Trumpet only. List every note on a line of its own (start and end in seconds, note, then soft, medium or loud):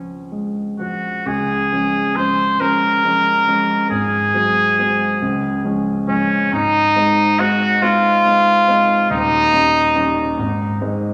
0.79 1.29 F#4 medium
1.27 2.17 G#4 medium
2.16 2.62 C5 medium
2.60 3.90 A#4 medium
3.90 5.61 G#4 medium
6.08 6.50 C#4 medium
6.53 7.41 D#4 medium
7.39 7.83 F#4 medium
7.82 9.10 F4 medium
9.11 10.78 D#4 medium